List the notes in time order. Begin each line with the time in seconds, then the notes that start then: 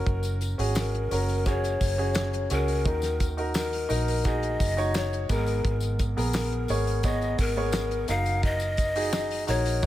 Already playing: C#4 F#4 A#4
0.06 F#1, kick, hi-hat pedal, open hi-hat
0.23 hi-hat pedal, open hi-hat, tambourine
0.41 hi-hat pedal, open hi-hat, tambourine
0.58 G#1 C#4 F#4 G#4, hi-hat pedal, open hi-hat
0.75 A#4, snare, clap, hi-hat pedal, open hi-hat, tambourine
0.94 hi-hat pedal
1.11 F#1 C#4 F#4 A#4, hi-hat pedal, open hi-hat, tambourine
1.29 open hi-hat, tambourine
1.46 C#4 F#4 G#4 C#5, kick, hi-hat pedal, open hi-hat, tambourine
1.64 hi-hat pedal, tambourine
1.81 F#1, kick, hi-hat pedal, open hi-hat, tambourine
1.98 C#4 F#4 G#4, open hi-hat
2.15 snare, clap, hi-hat pedal, open hi-hat, tambourine
2.33 hi-hat pedal
2.50 C#2 C#4 F#4 G#4 A#4, hi-hat pedal, open hi-hat, tambourine
2.68 open hi-hat
2.85 D#2 D#3 D#4 F#4 A#4, kick, hi-hat pedal, open hi-hat
3.02 snare, hi-hat pedal, tambourine
3.20 kick, hi-hat pedal, open hi-hat, tambourine
3.37 D#4 F#4 A#4, open hi-hat
3.54 A#4, snare, clap, hi-hat pedal, open hi-hat, tambourine
3.73 hi-hat pedal, open hi-hat
3.89 A#1 D#4 F#4 A#4, hi-hat pedal, open hi-hat, tambourine
4.08 hi-hat pedal, open hi-hat
4.24 D#4 F#4 G#4 D#5, kick, hi-hat pedal, open hi-hat, tambourine
4.43 hi-hat pedal
4.60 F#1, kick, hi-hat pedal, open hi-hat, tambourine
4.77 D#4 F#4 C#5, open hi-hat, tambourine
4.94 C#5, snare, clap, hi-hat pedal, open hi-hat, tambourine
5.12 hi-hat pedal
5.29 G#1 G#2 B3 G#4 A#4, kick, hi-hat pedal, open hi-hat, tambourine
5.46 open hi-hat, tambourine
5.65 G#1, kick, hi-hat pedal, open hi-hat
5.80 hi-hat pedal, open hi-hat, tambourine
5.99 kick, hi-hat pedal, open hi-hat, tambourine
6.16 A#1 B3 G#4 A#4, hi-hat pedal, open hi-hat
6.33 A#4, snare, clap, hi-hat pedal, open hi-hat, tambourine
6.52 hi-hat pedal
6.68 G#1 B3 G#4 C#5, hi-hat pedal, open hi-hat, tambourine
6.87 open hi-hat
7.03 B3 G#4 C#5 D#5, kick, hi-hat pedal, open hi-hat, tambourine
7.21 hi-hat pedal, tambourine
7.38 G#1 A#4, kick, hi-hat pedal, open hi-hat, tambourine
7.56 B3 G#4 C#5, open hi-hat
7.72 snare, clap, hi-hat pedal, open hi-hat, tambourine
7.91 hi-hat pedal
8.08 F#1 D#4 F#4 A#4 F5, hi-hat pedal, open hi-hat, tambourine
8.25 open hi-hat, tambourine
8.43 D#5, kick, hi-hat pedal, open hi-hat
8.60 hi-hat pedal, open hi-hat, tambourine
8.77 kick, hi-hat pedal, open hi-hat, tambourine
8.95 D#4 F#4 G#4, hi-hat pedal, open hi-hat
9.13 snare, clap, hi-hat pedal, open hi-hat, tambourine
9.30 hi-hat pedal, open hi-hat
9.47 A#1 D#4 F#4 A#4 C#5, hi-hat pedal, open hi-hat, tambourine
9.65 hi-hat pedal, open hi-hat, tambourine
9.82 D#4, hi-hat pedal, open hi-hat, tambourine